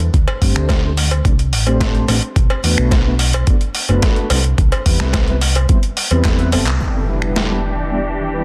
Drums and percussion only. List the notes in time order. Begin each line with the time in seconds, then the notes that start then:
0.00 closed hi-hat
0.14 kick, closed hi-hat
0.28 cowbell
0.42 kick, open hi-hat
0.56 finger snap
0.69 kick, snare, closed hi-hat, cowbell
0.97 open hi-hat
1.11 closed hi-hat, cowbell
1.25 kick, closed hi-hat
1.39 closed hi-hat
1.53 open hi-hat
1.67 closed hi-hat, cowbell
1.81 kick, snare, closed hi-hat
1.95 closed hi-hat
2.08 open hi-hat, cowbell
2.23 closed hi-hat
2.36 kick, closed hi-hat
2.50 cowbell
2.64 open hi-hat
2.78 finger snap, closed hi-hat
2.91 kick, snare, closed hi-hat, cowbell
3.19 open hi-hat
3.33 closed hi-hat, cowbell
3.47 kick, closed hi-hat
3.61 closed hi-hat
3.75 open hi-hat
3.89 closed hi-hat, cowbell
4.02 kick, snare, closed hi-hat
4.16 closed hi-hat
4.30 open hi-hat, cowbell
4.44 closed hi-hat
4.58 kick, closed hi-hat
4.72 closed hi-hat, cowbell
4.86 kick, open hi-hat
5.00 finger snap, snare
5.13 kick, snare, closed hi-hat, cowbell
5.28 closed hi-hat
5.41 open hi-hat
5.55 closed hi-hat, cowbell
5.69 kick, closed hi-hat
5.83 closed hi-hat
5.97 open hi-hat
6.11 closed hi-hat, cowbell
6.25 kick, snare, clap, closed hi-hat
6.39 closed hi-hat
6.52 open hi-hat, cowbell
6.67 clap, closed hi-hat
7.22 finger snap
7.36 snare